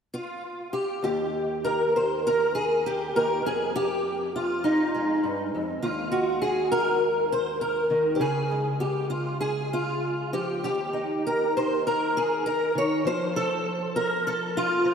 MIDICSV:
0, 0, Header, 1, 2, 480
1, 0, Start_track
1, 0, Tempo, 607903
1, 803, Time_signature, 4, 2, 24, 8
1, 2252, Tempo, 595238
1, 7052, Tempo, 609137
1, 9452, Tempo, 598205
1, 11932, End_track
2, 0, Start_track
2, 0, Title_t, "Steel-string acoustic guitar"
2, 0, Program_c, 0, 25
2, 107, Note_on_c, 0, 65, 78
2, 576, Note_on_c, 0, 67, 74
2, 586, Note_off_c, 0, 65, 0
2, 809, Note_on_c, 0, 39, 62
2, 810, Note_off_c, 0, 67, 0
2, 819, Note_on_c, 0, 67, 77
2, 1299, Note_on_c, 0, 70, 83
2, 1537, Note_off_c, 0, 70, 0
2, 1548, Note_on_c, 0, 72, 79
2, 1781, Note_off_c, 0, 72, 0
2, 1782, Note_off_c, 0, 67, 0
2, 1790, Note_on_c, 0, 70, 88
2, 2009, Note_off_c, 0, 70, 0
2, 2012, Note_on_c, 0, 68, 83
2, 2252, Note_off_c, 0, 68, 0
2, 2260, Note_on_c, 0, 67, 82
2, 2487, Note_off_c, 0, 39, 0
2, 2496, Note_on_c, 0, 39, 54
2, 2501, Note_on_c, 0, 70, 83
2, 2732, Note_off_c, 0, 39, 0
2, 2735, Note_on_c, 0, 41, 61
2, 2739, Note_off_c, 0, 70, 0
2, 2740, Note_off_c, 0, 67, 0
2, 2745, Note_on_c, 0, 68, 82
2, 2978, Note_off_c, 0, 68, 0
2, 2981, Note_on_c, 0, 67, 91
2, 3457, Note_off_c, 0, 67, 0
2, 3465, Note_on_c, 0, 65, 74
2, 3694, Note_on_c, 0, 63, 69
2, 3940, Note_on_c, 0, 56, 41
2, 4169, Note_off_c, 0, 41, 0
2, 4172, Note_on_c, 0, 43, 64
2, 4176, Note_off_c, 0, 65, 0
2, 4410, Note_off_c, 0, 43, 0
2, 4425, Note_on_c, 0, 41, 59
2, 4645, Note_off_c, 0, 41, 0
2, 4648, Note_on_c, 0, 39, 61
2, 4649, Note_off_c, 0, 63, 0
2, 4649, Note_on_c, 0, 65, 79
2, 4883, Note_on_c, 0, 66, 80
2, 5122, Note_off_c, 0, 65, 0
2, 5126, Note_on_c, 0, 68, 79
2, 5364, Note_off_c, 0, 68, 0
2, 5368, Note_on_c, 0, 70, 94
2, 5605, Note_off_c, 0, 66, 0
2, 5848, Note_off_c, 0, 70, 0
2, 5858, Note_on_c, 0, 72, 91
2, 6087, Note_off_c, 0, 72, 0
2, 6090, Note_on_c, 0, 70, 81
2, 6323, Note_on_c, 0, 51, 60
2, 6524, Note_on_c, 0, 67, 66
2, 6562, Note_on_c, 0, 49, 65
2, 6568, Note_off_c, 0, 51, 0
2, 6568, Note_off_c, 0, 70, 0
2, 6571, Note_on_c, 0, 68, 77
2, 6572, Note_off_c, 0, 39, 0
2, 6576, Note_off_c, 0, 56, 0
2, 6576, Note_off_c, 0, 67, 0
2, 6817, Note_on_c, 0, 56, 40
2, 7046, Note_off_c, 0, 68, 0
2, 7049, Note_on_c, 0, 67, 71
2, 7280, Note_off_c, 0, 67, 0
2, 7284, Note_on_c, 0, 65, 75
2, 7522, Note_off_c, 0, 65, 0
2, 7525, Note_on_c, 0, 68, 78
2, 7768, Note_off_c, 0, 68, 0
2, 7783, Note_on_c, 0, 65, 80
2, 8250, Note_off_c, 0, 49, 0
2, 8252, Note_on_c, 0, 53, 52
2, 8253, Note_off_c, 0, 65, 0
2, 8256, Note_on_c, 0, 67, 77
2, 8490, Note_off_c, 0, 67, 0
2, 8494, Note_on_c, 0, 39, 59
2, 8497, Note_off_c, 0, 56, 0
2, 8500, Note_on_c, 0, 67, 76
2, 8518, Note_off_c, 0, 53, 0
2, 8729, Note_on_c, 0, 63, 36
2, 8991, Note_on_c, 0, 70, 81
2, 9223, Note_off_c, 0, 70, 0
2, 9230, Note_on_c, 0, 72, 84
2, 9456, Note_off_c, 0, 67, 0
2, 9462, Note_off_c, 0, 72, 0
2, 9466, Note_on_c, 0, 70, 83
2, 9708, Note_on_c, 0, 68, 85
2, 9931, Note_off_c, 0, 70, 0
2, 9941, Note_on_c, 0, 70, 85
2, 9942, Note_off_c, 0, 68, 0
2, 10173, Note_on_c, 0, 51, 56
2, 10178, Note_off_c, 0, 70, 0
2, 10197, Note_on_c, 0, 73, 93
2, 10385, Note_off_c, 0, 63, 0
2, 10412, Note_on_c, 0, 53, 61
2, 10415, Note_off_c, 0, 51, 0
2, 10416, Note_off_c, 0, 39, 0
2, 10425, Note_off_c, 0, 73, 0
2, 10428, Note_on_c, 0, 72, 90
2, 10665, Note_on_c, 0, 69, 98
2, 11141, Note_off_c, 0, 72, 0
2, 11144, Note_on_c, 0, 70, 91
2, 11382, Note_off_c, 0, 70, 0
2, 11383, Note_off_c, 0, 69, 0
2, 11393, Note_on_c, 0, 69, 90
2, 11634, Note_on_c, 0, 65, 89
2, 11846, Note_off_c, 0, 53, 0
2, 11856, Note_on_c, 0, 53, 61
2, 11932, Note_off_c, 0, 53, 0
2, 11932, Note_off_c, 0, 65, 0
2, 11932, Note_off_c, 0, 69, 0
2, 11932, End_track
0, 0, End_of_file